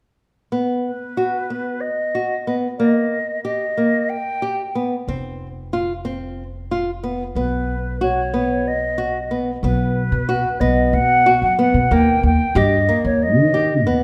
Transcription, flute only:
0.84 B4
1.80 D#5
2.78 D#5
3.44 D#5
4.09 G5
7.37 B4
8.01 C#5
8.67 D#5
9.64 B4
10.60 D#5
10.93 F#5
11.42 F#5
11.60 F#5
11.93 G5
12.25 G5
12.56 D#5
13.05 C#5
13.22 D#5

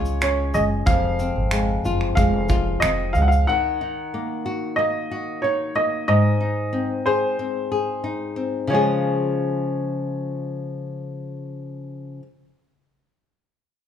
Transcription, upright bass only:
Already playing: C#2
0.55 F#1
0.86 F1
1.36 G#1
1.84 F#1
2.17 F1
2.83 F1
3.15 C#2

